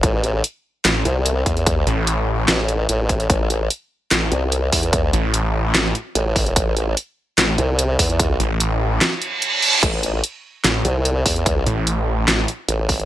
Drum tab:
CC |----------------|----------------|----------------|----------------|
HH |x-x-x---x-x-x-xx|x-x-x---x-x-x-xx|x-x-x---x-x-x-ox|x-x-x---x-x-x-ox|
CP |--------x-------|--------x-------|--------x-------|--------x-------|
SD |--------o-------|--------o-------|--------o-------|--------o-------|
BD |o-------------o-|o-------------o-|o-------------o-|o-------------o-|

CC |----------------|----------------|x---------------|----------------|
HH |x-x-x---x-x-x-ox|x-x-x---x-x-x-ox|x-x-x---x-x-x-ox|x-x-x---x-x-x-ox|
CP |--------x-------|--------x-------|--------x-------|--------x-------|
SD |--------o-------|--------o-------|--------o-------|--------o-------|
BD |o-------------o-|o---------------|o-------------o-|o-------------o-|